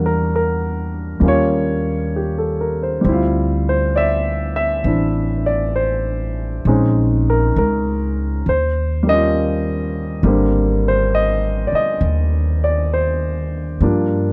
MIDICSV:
0, 0, Header, 1, 4, 480
1, 0, Start_track
1, 0, Tempo, 906344
1, 1612, Time_signature, 4, 2, 24, 8
1, 3527, Tempo, 895522
1, 7637, End_track
2, 0, Start_track
2, 0, Title_t, "Grand piano"
2, 0, Program_c, 0, 0
2, 0, Control_c, 0, 64, 127
2, 0, Note_on_c, 0, 55, 50
2, 0, Note_on_c, 0, 58, 48
2, 0, Note_on_c, 0, 62, 47
2, 0, Note_on_c, 0, 66, 52
2, 31, Note_on_c, 0, 70, 64
2, 167, Note_off_c, 0, 70, 0
2, 189, Note_on_c, 0, 70, 61
2, 627, Note_off_c, 0, 55, 0
2, 635, Note_on_c, 0, 55, 45
2, 637, Note_off_c, 0, 58, 0
2, 645, Note_on_c, 0, 58, 40
2, 650, Note_on_c, 0, 61, 43
2, 652, Note_off_c, 0, 62, 0
2, 652, Note_off_c, 0, 66, 0
2, 655, Control_c, 0, 64, 0
2, 661, Note_on_c, 0, 65, 51
2, 672, Note_off_c, 0, 70, 0
2, 678, Note_on_c, 0, 73, 76
2, 730, Control_c, 0, 64, 127
2, 1145, Note_on_c, 0, 67, 35
2, 1262, Note_on_c, 0, 69, 40
2, 1365, Note_off_c, 0, 67, 0
2, 1382, Note_on_c, 0, 70, 42
2, 1450, Note_off_c, 0, 73, 0
2, 1464, Note_off_c, 0, 69, 0
2, 1499, Note_on_c, 0, 72, 41
2, 1525, Note_off_c, 0, 70, 0
2, 1587, Note_off_c, 0, 55, 0
2, 1595, Note_on_c, 0, 55, 45
2, 1611, Note_off_c, 0, 58, 0
2, 1613, Note_off_c, 0, 61, 0
2, 1614, Note_on_c, 0, 60, 45
2, 1619, Note_off_c, 0, 65, 0
2, 1619, Control_c, 0, 64, 0
2, 1634, Note_on_c, 0, 64, 45
2, 1654, Note_on_c, 0, 65, 58
2, 1664, Note_off_c, 0, 72, 0
2, 1694, Control_c, 0, 64, 127
2, 1954, Note_on_c, 0, 72, 64
2, 2080, Note_off_c, 0, 72, 0
2, 2096, Note_on_c, 0, 74, 61
2, 2105, Note_on_c, 0, 76, 75
2, 2106, Note_off_c, 0, 74, 0
2, 2408, Note_off_c, 0, 76, 0
2, 2416, Note_on_c, 0, 76, 76
2, 2561, Note_off_c, 0, 60, 0
2, 2569, Note_on_c, 0, 60, 32
2, 2576, Note_off_c, 0, 64, 0
2, 2577, Note_on_c, 0, 62, 34
2, 2584, Note_on_c, 0, 64, 36
2, 2874, Note_off_c, 0, 76, 0
2, 2893, Note_on_c, 0, 74, 62
2, 3048, Note_on_c, 0, 72, 63
2, 3053, Note_off_c, 0, 74, 0
2, 3428, Note_off_c, 0, 72, 0
2, 3519, Note_off_c, 0, 55, 0
2, 3526, Note_off_c, 0, 60, 0
2, 3530, Note_off_c, 0, 62, 0
2, 3534, Note_off_c, 0, 64, 0
2, 3534, Note_on_c, 0, 56, 50
2, 3535, Control_c, 0, 64, 0
2, 3536, Note_on_c, 0, 60, 41
2, 3540, Note_on_c, 0, 61, 45
2, 3542, Note_on_c, 0, 63, 50
2, 3549, Note_off_c, 0, 65, 0
2, 3611, Control_c, 0, 64, 127
2, 3869, Note_on_c, 0, 70, 59
2, 4007, Note_off_c, 0, 70, 0
2, 4022, Note_on_c, 0, 70, 57
2, 4475, Note_off_c, 0, 70, 0
2, 4493, Note_off_c, 0, 56, 0
2, 4494, Note_off_c, 0, 60, 0
2, 4496, Note_off_c, 0, 61, 0
2, 4497, Note_off_c, 0, 63, 0
2, 4498, Control_c, 0, 64, 0
2, 4508, Note_on_c, 0, 72, 67
2, 4604, Control_c, 0, 64, 127
2, 4797, Note_on_c, 0, 55, 43
2, 4802, Note_off_c, 0, 72, 0
2, 4813, Note_on_c, 0, 58, 39
2, 4830, Note_on_c, 0, 75, 85
2, 4834, Note_on_c, 0, 61, 39
2, 4855, Note_on_c, 0, 65, 46
2, 5280, Note_off_c, 0, 75, 0
2, 5437, Note_off_c, 0, 55, 0
2, 5444, Note_off_c, 0, 58, 0
2, 5445, Note_on_c, 0, 55, 56
2, 5452, Note_on_c, 0, 58, 52
2, 5455, Control_c, 0, 64, 0
2, 5458, Note_off_c, 0, 61, 0
2, 5463, Note_on_c, 0, 60, 47
2, 5467, Note_on_c, 0, 50, 59
2, 5469, Note_off_c, 0, 65, 0
2, 5545, Control_c, 0, 64, 127
2, 5790, Note_on_c, 0, 72, 69
2, 5932, Note_on_c, 0, 75, 78
2, 5940, Note_off_c, 0, 72, 0
2, 6211, Note_off_c, 0, 75, 0
2, 6213, Note_on_c, 0, 74, 53
2, 6257, Note_off_c, 0, 74, 0
2, 6257, Note_on_c, 0, 75, 71
2, 6710, Note_off_c, 0, 75, 0
2, 6732, Note_on_c, 0, 74, 66
2, 6890, Note_off_c, 0, 74, 0
2, 6890, Note_on_c, 0, 72, 62
2, 7268, Note_off_c, 0, 72, 0
2, 7358, Note_off_c, 0, 55, 0
2, 7360, Note_off_c, 0, 58, 0
2, 7363, Note_on_c, 0, 53, 51
2, 7366, Note_on_c, 0, 55, 43
2, 7368, Note_on_c, 0, 58, 41
2, 7370, Note_on_c, 0, 62, 52
2, 7371, Control_c, 0, 64, 0
2, 7372, Note_off_c, 0, 60, 0
2, 7374, Note_off_c, 0, 50, 0
2, 7478, Control_c, 0, 64, 127
2, 7637, Note_off_c, 0, 53, 0
2, 7637, Note_off_c, 0, 55, 0
2, 7637, Note_off_c, 0, 58, 0
2, 7637, Note_off_c, 0, 62, 0
2, 7637, End_track
3, 0, Start_track
3, 0, Title_t, "Upright bass"
3, 0, Program_c, 1, 32
3, 0, Note_on_c, 1, 40, 73
3, 623, Note_off_c, 1, 40, 0
3, 639, Note_on_c, 1, 39, 66
3, 1587, Note_off_c, 1, 39, 0
3, 1613, Note_on_c, 1, 38, 70
3, 2550, Note_off_c, 1, 38, 0
3, 2564, Note_on_c, 1, 33, 66
3, 3503, Note_off_c, 1, 33, 0
3, 3523, Note_on_c, 1, 34, 72
3, 3986, Note_off_c, 1, 34, 0
3, 4011, Note_on_c, 1, 37, 65
3, 4469, Note_off_c, 1, 37, 0
3, 4492, Note_on_c, 1, 39, 59
3, 5428, Note_off_c, 1, 39, 0
3, 5441, Note_on_c, 1, 32, 69
3, 6225, Note_off_c, 1, 32, 0
3, 6393, Note_on_c, 1, 39, 75
3, 7337, Note_off_c, 1, 39, 0
3, 7357, Note_on_c, 1, 43, 66
3, 7637, Note_off_c, 1, 43, 0
3, 7637, End_track
4, 0, Start_track
4, 0, Title_t, "Muted upright bass strokes"
4, 6240, Note_on_c, 9, 29, 36
4, 6294, Note_off_c, 9, 29, 0
4, 7637, End_track
0, 0, End_of_file